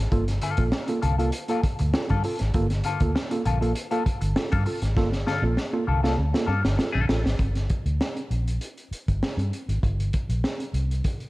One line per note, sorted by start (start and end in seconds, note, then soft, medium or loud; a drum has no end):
0.11 0.38 G1 loud
0.11 0.23 A#3 medium
0.11 0.23 F4 medium
0.11 0.23 A4 medium
0.11 kick loud
0.11 closed hi-hat medium
0.28 snare soft
0.28 closed hi-hat medium
0.41 0.53 G2 medium
0.41 0.53 D3 medium
0.41 0.63 A#3 medium
0.41 0.63 F4 medium
0.41 0.63 A4 medium
0.41 closed hi-hat medium
0.57 0.71 A#1 medium
0.57 0.68 A#3 medium
0.57 0.68 F4 medium
0.57 0.69 A4 medium
0.57 kick medium
0.57 closed hi-hat medium
0.72 muted clean electric guitar stroke soft
0.72 snare loud
0.87 0.99 A#3 medium
0.87 0.99 F4 medium
0.87 0.99 A4 medium
0.87 muted clean electric guitar stroke medium
0.87 closed hi-hat medium
1.02 1.30 C2 medium
1.02 1.14 G2 medium
1.02 1.14 D3 medium
1.02 1.14 A#3 medium
1.02 1.15 F4 medium
1.02 1.15 A4 medium
1.02 closed hi-hat medium
1.18 1.29 A#3 medium
1.18 1.30 A#3 medium
1.18 1.30 F4 soft
1.18 1.29 F4 medium
1.18 1.29 A4 medium
1.18 closed hi-hat soft
1.32 muted clean electric guitar stroke soft
1.32 closed hi-hat medium
1.48 1.59 A#3 medium
1.48 1.62 A#3 medium
1.48 1.59 F4 medium
1.48 1.62 F4 medium
1.48 1.62 A4 medium
1.48 1.59 A4 medium
1.48 closed hi-hat soft
1.63 muted fingered electric bass stroke soft
1.63 kick medium
1.63 closed hi-hat medium
1.79 1.93 D2 loud
1.79 1.89 G2 medium
1.79 1.89 D3 medium
1.79 muted clean electric guitar stroke medium
1.79 closed hi-hat medium
1.94 2.05 F4 medium
1.94 2.05 A4 medium
1.94 muted clean electric guitar stroke medium
1.94 snare loud
2.09 2.20 G2 medium
2.09 2.23 G2 medium
2.09 2.20 D3 medium
2.09 2.23 A#3 medium
2.09 2.24 F4 medium
2.09 2.24 A4 medium
2.09 kick medium
2.09 closed hi-hat soft
2.24 2.36 F4 medium
2.24 2.36 A4 medium
2.24 muted clean electric guitar stroke soft
2.24 open hi-hat medium
2.39 2.53 G#1 medium
2.39 muted clean electric guitar stroke medium
2.39 snare soft
2.39 closed hi-hat medium
2.54 2.81 G1 loud
2.54 2.66 A#3 medium
2.54 2.66 F4 medium
2.54 2.66 A4 loud
2.54 kick loud
2.54 closed hi-hat medium
2.70 snare soft
2.70 closed hi-hat soft
2.84 2.96 G2 medium
2.84 2.96 D3 medium
2.84 3.00 A#3 medium
2.84 3.01 F4 medium
2.84 3.01 A4 medium
2.84 closed hi-hat medium
3.00 3.13 D2 medium
3.00 3.11 A#3 medium
3.00 3.11 F4 medium
3.00 3.11 A4 medium
3.00 kick medium
3.00 closed hi-hat soft
3.15 muted clean electric guitar stroke soft
3.15 snare loud
3.31 3.41 A#3 medium
3.31 3.41 F4 medium
3.31 3.41 A4 medium
3.31 muted clean electric guitar stroke medium
3.31 closed hi-hat medium
3.45 3.72 A#1 medium
3.45 3.57 G2 medium
3.45 3.57 D3 medium
3.45 3.58 A#3 medium
3.45 3.58 F4 medium
3.45 3.58 A4 medium
3.45 closed hi-hat medium
3.61 3.71 A#3 medium
3.61 3.73 A#3 medium
3.61 3.71 F4 medium
3.61 3.72 F4 soft
3.61 3.72 A4 medium
3.61 closed hi-hat soft
3.75 muted clean electric guitar stroke soft
3.75 closed hi-hat medium
3.91 4.02 A#3 medium
3.91 4.04 A#3 medium
3.91 4.04 F4 medium
3.91 4.02 F4 medium
3.91 4.05 A4 loud
3.91 4.02 A4 loud
3.91 closed hi-hat soft
4.06 muted fingered electric bass stroke soft
4.06 kick medium
4.06 closed hi-hat medium
4.21 4.34 G1 medium
4.21 4.32 G2 medium
4.21 4.32 D3 medium
4.21 muted clean electric guitar stroke soft
4.21 closed hi-hat medium
4.36 4.47 F4 medium
4.36 4.48 A4 medium
4.36 muted clean electric guitar stroke medium
4.36 snare loud
4.52 4.63 G2 medium
4.52 4.65 G2 medium
4.52 4.63 D3 medium
4.52 4.64 A#3 medium
4.52 4.65 F4 medium
4.52 4.65 A4 medium
4.52 kick medium
4.52 closed hi-hat soft
4.66 4.78 F4 medium
4.66 4.78 A4 medium
4.66 muted clean electric guitar stroke soft
4.66 open hi-hat medium
4.82 4.97 G#1 medium
4.82 muted clean electric guitar stroke medium
4.82 snare soft
4.82 closed hi-hat medium
4.97 5.24 G1 loud
4.97 5.08 A#3 medium
4.97 5.08 F4 medium
4.97 5.08 A4 loud
4.97 kick loud
4.97 snare medium
5.12 snare medium
5.27 5.39 G2 medium
5.27 5.39 D3 medium
5.27 5.43 A#3 medium
5.27 5.43 F4 medium
5.27 5.43 A4 loud
5.27 snare medium
5.42 5.55 A#1 medium
5.42 5.53 A#3 medium
5.42 5.54 F4 medium
5.42 5.54 A4 medium
5.57 muted clean electric guitar stroke soft
5.57 snare medium
5.73 5.83 A#3 medium
5.73 5.84 F4 medium
5.73 5.84 A4 medium
5.73 muted clean electric guitar stroke soft
5.87 6.15 C2 medium
5.87 5.99 G2 medium
5.87 5.99 D3 medium
5.87 6.00 A#3 medium
5.87 6.00 F4 medium
5.87 6.01 A4 medium
6.03 6.14 A#3 medium
6.03 6.15 A#3 soft
6.03 6.15 F4 medium
6.03 6.14 F4 medium
6.03 6.14 A4 medium
6.03 snare medium
6.18 6.32 D2 medium
6.18 muted clean electric guitar stroke soft
6.33 6.45 A#3 medium
6.33 6.45 F4 medium
6.33 6.45 A4 medium
6.33 muted clean electric guitar stroke soft
6.33 snare medium
6.46 6.62 G2 medium
6.46 6.63 A#3 medium
6.46 6.62 F4 medium
6.46 6.62 A4 medium
6.63 6.77 G1 medium
6.63 6.75 G2 medium
6.63 6.75 D3 medium
6.63 muted clean electric guitar stroke medium
6.63 snare medium
6.77 6.90 F4 medium
6.77 6.91 A4 medium
6.77 muted clean electric guitar stroke soft
6.77 snare loud
6.92 7.08 A#1 medium
6.92 7.05 G2 medium
6.92 7.05 D3 medium
6.92 7.06 A#3 medium
6.92 7.07 F4 medium
6.92 7.07 A4 medium
7.08 7.23 A1 medium
7.08 7.21 F4 medium
7.08 7.21 A4 medium
7.08 muted clean electric guitar stroke medium
7.08 snare loud
7.25 7.38 G#1 medium
7.25 muted clean electric guitar stroke soft
7.25 snare medium
7.39 7.66 G1 medium
7.39 kick medium
7.39 closed hi-hat medium
7.55 snare soft
7.55 closed hi-hat soft
7.70 kick medium
7.70 closed hi-hat medium
7.86 7.99 D2 medium
7.86 closed hi-hat soft
8.01 snare loud
8.17 closed hi-hat soft
8.30 8.57 A#1 medium
8.30 closed hi-hat medium
8.48 closed hi-hat soft
8.61 closed hi-hat medium
8.78 closed hi-hat soft
8.91 muted fingered electric bass stroke soft
8.91 closed hi-hat medium
9.08 9.21 G1 medium
9.08 kick medium
9.08 closed hi-hat soft
9.23 snare loud
9.37 9.50 G2 medium
9.37 closed hi-hat soft
9.53 closed hi-hat medium
9.69 9.81 G#1 medium
9.69 closed hi-hat medium
9.83 10.10 G1 loud
9.83 kick medium
9.83 closed hi-hat medium
10.00 closed hi-hat medium
10.13 kick medium
10.13 closed hi-hat medium
10.29 10.42 A#1 medium
10.29 closed hi-hat medium
10.44 snare medium
10.60 closed hi-hat soft
10.74 11.01 C2 medium
10.74 closed hi-hat medium
10.91 closed hi-hat soft
11.04 kick medium
11.04 closed hi-hat medium
11.20 closed hi-hat soft